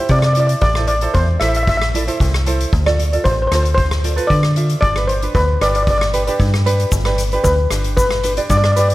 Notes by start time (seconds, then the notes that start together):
Already playing: C5
0.00 E4 G4 C5
0.09 C3 D5, kick, closed hi-hat
0.19 D5, cross-stick
0.26 D5
0.33 E4 G4 D5, closed hi-hat
0.38 D5
0.47 D5, closed hi-hat
0.61 A1 D5, kick, closed hi-hat
0.75 E4 A4 C5, cross-stick
0.87 D5, closed hi-hat
1.01 E4 A4 C5, closed hi-hat
1.14 E2 C5, kick, closed hi-hat
1.40 A1 E4 A4 C5 E5, cross-stick, closed hi-hat
1.48 E5
1.54 E5, closed hi-hat
1.63 E5
1.67 E5, kick, closed hi-hat
1.77 E5
1.81 cross-stick
1.94 E4 A4 D5, closed hi-hat
2.07 E4 A4 C5, closed hi-hat
2.20 C2, kick, closed hi-hat
2.34 cross-stick
2.46 E4 A4 C5, closed hi-hat
2.60 closed hi-hat
2.73 D2, kick, closed hi-hat
2.86 F4 A4 D5, cross-stick
2.99 closed hi-hat
3.13 F4 A4 D5, closed hi-hat
3.24 A1 C5, kick, closed hi-hat
3.32 C5
3.42 C5
3.47 C5
3.52 D2 F4 A4 C5 F5, cross-stick, closed hi-hat
3.63 C5, closed hi-hat
3.75 C5, kick, closed hi-hat
3.91 cross-stick
4.04 F4 A4 D5, closed hi-hat
4.16 F4 A4 B4, closed hi-hat
4.27 D3 D5, kick, closed hi-hat
4.43 cross-stick
4.56 F4 A4 E5, closed hi-hat
4.70 closed hi-hat
4.81 G1 D5, kick, closed hi-hat
4.96 D4 G4 B4, cross-stick
5.08 C5, closed hi-hat
5.22 D4 G4 B4, closed hi-hat
5.35 D2 B4, kick, closed hi-hat
5.61 G1 D4 G4 B4 D5, cross-stick, closed hi-hat
5.68 D5
5.75 D5, closed hi-hat
5.83 D5
5.87 D5, kick, closed hi-hat
5.98 D5, cross-stick
6.14 D4 G4 B4, closed hi-hat
6.27 D4 G4 B4, closed hi-hat
6.40 G2, kick, closed hi-hat
6.54 cross-stick
6.66 D4 G4 B4, closed hi-hat
6.80 closed hi-hat
6.92 G1, kick, closed hi-hat, shaker
7.05 D4 G4 B4, cross-stick
7.18 closed hi-hat, shaker
7.32 D4 G4 B4, closed hi-hat
7.44 D2 B4, kick, closed hi-hat, shaker
7.71 G1 D4 G4 B4, cross-stick, closed hi-hat, shaker
7.84 closed hi-hat
7.97 B4, kick, closed hi-hat, shaker
8.11 cross-stick
8.23 D4 G4 B4, closed hi-hat, shaker
8.37 D4 G4 D5, closed hi-hat
8.49 G2 D5, kick, closed hi-hat, shaker
8.57 D5
8.64 D5, cross-stick
8.72 D5
8.76 D4 G4 B4 D5, closed hi-hat, shaker
8.88 D5, closed hi-hat, shaker